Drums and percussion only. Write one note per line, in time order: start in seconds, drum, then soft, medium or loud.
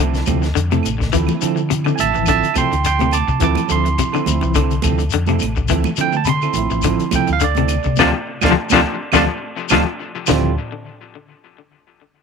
0.14 snare soft
0.14 closed hi-hat soft
0.14 shekere soft
0.26 kick medium
0.26 closed hi-hat medium
0.26 high conga loud
0.26 claves medium
0.26 shekere medium
0.43 snare soft
0.43 closed hi-hat soft
0.43 shekere soft
0.56 closed hi-hat medium
0.56 shekere medium
0.71 closed hi-hat soft
0.71 high conga medium
0.71 shekere soft
0.83 closed hi-hat medium
0.83 high conga medium
0.83 claves medium
0.83 shekere medium
1.01 kick medium
1.01 snare soft
1.01 shekere soft
1.12 kick medium
1.12 closed hi-hat medium
1.12 low conga medium
1.12 shekere medium
1.27 high conga loud
1.27 claves medium
1.27 shekere soft
1.41 closed hi-hat medium
1.41 shekere medium
1.57 shekere soft
1.71 closed hi-hat medium
1.71 shekere medium
1.84 claves medium
1.84 shekere soft
1.98 closed hi-hat medium
1.98 high conga medium
1.98 low conga medium
1.98 shekere medium
2.14 low conga medium
2.14 shekere soft
2.26 kick medium
2.26 closed hi-hat medium
2.26 claves medium
2.26 shekere medium
2.43 closed hi-hat soft
2.43 shekere soft
2.54 kick medium
2.54 closed hi-hat medium
2.54 high conga medium
2.54 claves medium
2.54 shekere medium
2.72 closed hi-hat soft
2.72 shekere soft
2.85 closed hi-hat medium
2.85 shekere medium
2.99 closed hi-hat soft
2.99 high conga medium
2.99 shekere soft
3.11 closed hi-hat medium
3.11 high conga medium
3.11 claves medium
3.11 shekere medium
3.28 kick medium
3.28 shekere soft
3.40 kick medium
3.40 closed hi-hat medium
3.40 low conga medium
3.40 shekere medium
3.55 closed hi-hat soft
3.55 high conga loud
3.55 claves medium
3.55 shekere soft
3.69 closed hi-hat soft
3.69 shekere medium
3.86 closed hi-hat soft
3.86 shekere soft
3.98 kick medium
3.98 closed hi-hat medium
3.98 shekere medium
4.14 claves medium
4.14 shekere soft
4.26 closed hi-hat medium
4.26 high conga medium
4.26 low conga medium
4.26 shekere medium
4.41 low conga medium
4.41 shekere soft
4.54 kick medium
4.54 closed hi-hat medium
4.54 claves medium
4.54 shekere medium
4.71 closed hi-hat soft
4.71 shekere soft
4.82 kick medium
4.82 closed hi-hat soft
4.82 high conga loud
4.82 claves medium
4.82 shekere medium
4.99 closed hi-hat soft
4.99 shekere soft
5.10 closed hi-hat medium
5.10 shekere medium
5.27 closed hi-hat soft
5.27 high conga medium
5.27 shekere soft
5.39 closed hi-hat medium
5.39 high conga medium
5.39 claves medium
5.39 shekere medium
5.56 kick medium
5.56 shekere soft
5.68 kick medium
5.68 closed hi-hat medium
5.68 low conga medium
5.68 shekere medium
5.84 high conga loud
5.84 claves medium
5.84 shekere soft
5.96 closed hi-hat medium
5.96 shekere medium
6.13 high conga medium
6.13 shekere soft
6.25 closed hi-hat medium
6.25 shekere loud
6.42 claves medium
6.42 shekere soft
6.53 closed hi-hat medium
6.53 high conga medium
6.53 low conga medium
6.53 shekere medium
6.70 shekere soft
6.82 kick medium
6.82 closed hi-hat medium
6.82 claves medium
6.82 shekere medium
7.00 closed hi-hat soft
7.00 shekere soft
7.11 kick medium
7.11 closed hi-hat medium
7.11 high conga loud
7.11 claves medium
7.11 shekere medium
7.27 closed hi-hat soft
7.27 shekere soft
7.40 closed hi-hat medium
7.40 shekere loud
7.55 closed hi-hat soft
7.55 high conga medium
7.55 shekere soft
7.68 closed hi-hat medium
7.68 high conga medium
7.68 claves medium
7.68 shekere medium
7.83 kick medium
7.83 shekere soft
7.96 kick medium
7.96 snare medium
7.96 high conga medium
7.96 claves loud
7.96 shekere loud
8.41 kick medium
8.41 snare medium
8.41 high conga medium
8.41 claves loud
8.41 shekere loud
8.70 kick medium
8.70 high conga loud
8.70 claves loud
8.70 shekere loud
8.74 snare medium
9.12 kick medium
9.12 snare medium
9.12 high conga loud
9.12 claves loud
9.12 shekere medium
9.69 kick medium
9.69 snare medium
9.69 high conga loud
9.69 claves loud
9.69 shekere loud
10.27 snare medium
10.27 floor tom medium
10.27 low conga loud
10.27 claves medium
10.27 shekere loud